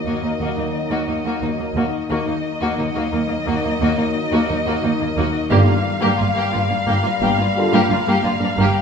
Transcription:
Already playing: D#3 F#3 A#3 D#4 D#5
0.05 D#2 D#3 A#3 F#4
0.23 D#2 A#3 D#4
0.39 D#2 D#3 A#3 F#4
0.56 D#2 A#3 D#4
0.73 D#3
0.90 D#2 A#3 F#4
1.07 D#2 A#3 D#4
1.25 D#2 A#3 F#4
1.41 D#2 D#3 A#3 D#4
1.59 D#2 A#3
1.75 D#2 A#3 D#4 F#4
2.09 D#2 D#3 F#3 A#3 D#4 F#4 D#5
2.27 D#2 A#3 D#4
2.44 D#4
2.61 D#2 A#3 F#4
2.77 D#2 D#3 A#3 D#4
2.95 D#2 A#3 F#4
3.11 D#2 D#3 A#3 D#4
3.29 D#2 A#3
3.46 D#2 D#3 A#3 F#4
3.64 D#2 A#3 D#4
3.80 D#2 D#3 A#3 F#4
3.98 D#2 A#3 D#4
4.14 D#3
4.32 D#2 A#3 F#4
4.48 D#2 A#3 D#4
4.65 D#2 A#3 F#4
4.82 D#2 D#3 A#3 D#4
4.99 D#2 A#3
5.16 D#2 A#3 D#4 F#4
5.49 G1 G2 D3 G3 A#3 F4 G4 F5 A#5
5.68 G2 A#3 F4
5.86 G3
6.01 G2 A#3 G4
6.17 G1 G2 A#3 F4 B5
6.34 G2 A#3 G4
6.52 G1 G2 A#3 F4
6.69 G2 A#3 D4
6.86 G1 G2 A#3 G4 F6
7.03 G2 A#3 F4
7.21 G1 G2 A#3 G4
7.37 G2 A#3 F4
7.55 G2 D3 G3 A#3 F4
7.72 G2 A#3 G4
7.89 G1 G2 G3 A#3 F4
8.06 G2 A#3 G4
8.23 G1 G2 A#3 F4
8.39 G2 A#3 D4
8.57 G1 G2 G3 A#3 G4

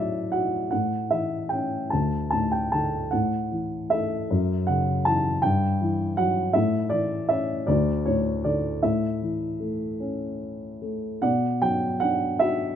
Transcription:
Already playing: A2 F#3 D5 E5
0.32 F#4 F#5
0.71 A2 F#5
1.11 E3 E5
1.49 C#4 G5
1.90 D2 A5
2.31 A2 A5
2.52 G5
2.72 D3 A5
3.11 A2 F#5
3.52 E3
3.90 A3 E5
4.31 F#2
4.67 C#3 F#5
5.05 E3 A5
5.42 G2 G5
5.81 E3
6.17 F#3 F#5
6.53 A2 E5
6.90 E3 D5
7.29 C#4 E5
7.67 D2 D5
8.06 A2 C#5
8.44 D3 D5
8.83 A2 E5
9.22 E3
9.60 A3
10.00 C#4
10.82 A3
11.22 B2 D5 F#5
11.62 F#3 G5
12.00 D4 F#5
12.39 F#4 E5

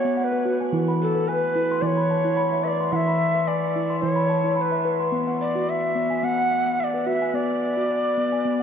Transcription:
Already playing: C#5 E5 F#5
0.05 B3
0.17 C#5 F#5
0.24 B4
0.32 B4
0.45 F#4
0.61 G#5
0.72 E3 E4
0.88 B5
1.02 A4
1.15 B4
1.28 B4 G#5
1.56 E4
1.72 C6
1.82 E3 E4 D5
1.87 C#5
1.97 B5
2.11 A5
2.25 E4
2.37 B5
2.53 E5
2.64 B4 E5
2.68 D5
2.80 C6
2.92 E3 E4 E5 F#5
3.08 B5
3.35 B4
3.48 D5 G#5
3.76 E4
3.90 C6
4.02 E3 E4 C#5
4.16 B5
4.30 A5
4.44 E4
4.51 C#5
4.56 C#5 B5
4.61 B4
4.72 E5
4.85 B4
5.00 C6
5.12 B3
5.27 F#5
5.41 D5
5.55 F#4
5.68 D5 E5
5.95 B3
6.10 G#5
6.23 B3 F#5
6.39 F#5
6.51 E5
6.66 B3
6.79 E5 F#5
6.84 D5
6.94 B4
7.06 F#4 E5
7.22 G#5
7.34 B3 D5
7.77 F#4
7.90 D5
8.18 B3
8.32 G#5
8.45 B3

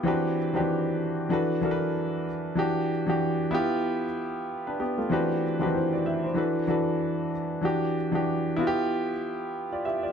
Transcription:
0.03 E3 C4 D4 F#4 G4
0.08 B4
0.53 D#3 C4 D4 F#4 G4 B4
0.60 E3
1.29 E3 D4 F#4 A4 B4
1.61 E3 D4 F#4 A4 A#4
1.71 B4
2.55 E3 D4 F#4 G4
3.06 E3 D4 F#4 G4
3.51 B3 E4 F4 G4
4.67 D4 B4
4.80 B3 G4
4.98 A3 F4
5.10 E3 C4 D4 F#4 G4 B4
5.59 D#3 C4 D4 F#4 G4 B4
5.66 E3
5.75 E4 C5
5.93 F#4 D5
6.06 G4 E5
6.24 E4 C5
6.34 E3 D4 F#4 A4 B4
6.67 E3 D4 F#4 A4 B4
7.61 E3 D4 F#4 G4
8.12 E3 D4 F#4 G4
8.56 B3 E4 F4 F#4
8.67 G4
9.72 F4 D5
9.85 G4 E5
10.03 F4 D5

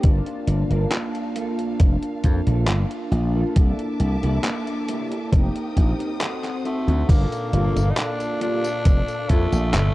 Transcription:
0.02 G1 A#3 D4 F4 F5 A5, kick, closed hi-hat
0.26 closed hi-hat
0.47 G1, muted clean electric guitar stroke, closed hi-hat
0.70 G1 A#3 F4 A#4, closed hi-hat
0.92 clap, closed hi-hat
1.15 closed hi-hat
1.36 A#3 F4 A4, closed hi-hat
1.59 closed hi-hat
1.80 F1, kick, closed hi-hat
2.03 closed hi-hat
2.24 F2, muted clean electric guitar stroke, kick, closed hi-hat
2.47 A#1 A#3 F4 A4, closed hi-hat
2.68 G1, clap, closed hi-hat
2.91 closed hi-hat
3.11 A#1, muted clean electric guitar stroke, closed hi-hat
3.35 A#3 F4 A4
3.55 C2 A#3 D4 E4 A4 E5 A5 D6, kick, closed hi-hat
3.79 closed hi-hat
4.00 C2, muted clean electric guitar stroke, closed hi-hat
4.23 C2 A#3 D4 E4 A4, closed hi-hat
4.44 clap, closed hi-hat
4.67 closed hi-hat
4.88 A#3 D4 E4 G4, closed hi-hat
5.12 closed hi-hat
5.32 F1 C4 D#4 G4 A#4 G5 D#6, kick, closed hi-hat
5.56 closed hi-hat
5.76 A#1, muted clean electric guitar stroke, kick, closed hi-hat
5.99 A#3 D#4 G4, closed hi-hat
6.20 C4 D#4 F#4 A4 C5 F#5, clap, closed hi-hat
6.44 clap, closed hi-hat
6.64 A3, muted clean electric guitar stroke, closed hi-hat
6.87 D2 C4 D#4 F#4, closed hi-hat
7.08 G1 A#2 A#3 D4 F4 A4 F5, kick, closed hi-hat, crash, tambourine
7.32 closed hi-hat, tambourine
7.52 G1 A#3 F4 G4 A4, closed hi-hat
7.76 G1, closed hi-hat, tambourine
7.91 D#4
7.97 D4, clap, closed hi-hat, tambourine
8.20 closed hi-hat, tambourine
8.41 A#3 D4 F4 G4 A4, closed hi-hat
8.64 closed hi-hat, tambourine
8.85 F1, kick, closed hi-hat, tambourine
9.08 closed hi-hat, tambourine
9.29 F2 A3 A#3 F4 G4 A4, kick, closed hi-hat
9.52 A#1, closed hi-hat, tambourine
9.74 G1, clap, closed hi-hat, tambourine

